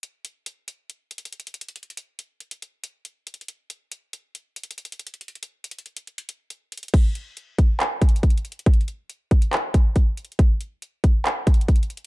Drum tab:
CC |------------------------------------------------------------------------------------------------|------------------------------------------------------------------------------------------------|------------------------------------------------------------------------------------------------|------------------------------------------------------------------------------------------------|
HH |x-----------x-----------x-----------x-----------x-----------x---x---x---x---x---x---x---x---x---|x---x---x---x-----------x-----------x-----x-----x-----------x-----------x-----------x---x---x---|x-----------x-----------x-----------x-----------x-----------x---x---x---x---x---x---x---x---x---|x---x---x---x-----------x---x---x---x-----x-----x-----x-----x-----------x-----------x--x--x--x--|
CP |------------------------------------------------------------------------------------------------|------------------------------------------------------------------------------------------------|------------------------------------------------------------------------------------------------|------------------------------------------------------------------------------------------------|
BD |------------------------------------------------------------------------------------------------|------------------------------------------------------------------------------------------------|------------------------------------------------------------------------------------------------|------------------------------------------------------------------------------------------------|

CC |x-----------------------------------------------------------------------------------------------|------------------------------------------------------------------------------------------------|------------------------------------------------------------------------------------------------|
HH |x-----------x-----------x-----------x-----------x-----------x---x---x---x---x---x---x---x---x---|x---x---x---x-----------x-----------x-----x-----x-----------x-----------x-----------x---x---x---|x-----------x-----------x-----------x-----------x-----------x---x---x---x---x---x---x---x-------|
CP |------------------------------------------------x-----------------------------------------------|------------------------------------------------x-----------------------------------------------|------------------------------------------------x-----------------------------------------------|
BD |o-----------------------------------o-----------------------o-----------o-----------------------|o-----------------------------------o-----------------------o-----------o-----------------------|o-----------------------------------o-----------------------o-----------o-----------------------|